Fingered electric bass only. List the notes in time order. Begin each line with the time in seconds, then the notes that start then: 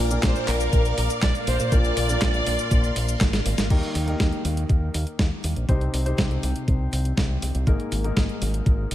0.00 A#1
0.23 A#1
0.48 A#1
0.73 A#1
0.98 A#1
1.22 A#1
1.47 A#1
1.60 A#2
1.72 A#1
1.97 A#1
2.22 A#1
2.47 A#1
2.71 A#1
2.96 A#1
3.21 G#1
3.46 G#1
3.58 G#1
3.70 D#2
3.95 D#2
4.20 D#2
4.45 D#2
4.70 D#2
4.94 D#2
5.19 D#2
5.44 D#2
5.56 A#1
5.69 C2
5.93 C2
6.18 C2
6.43 C2
6.68 C2
6.93 C2
7.17 C2
7.42 C2
7.55 C2
7.67 G#1
7.92 G#1
8.17 G#1
8.41 G#1
8.66 G#1
8.91 G#1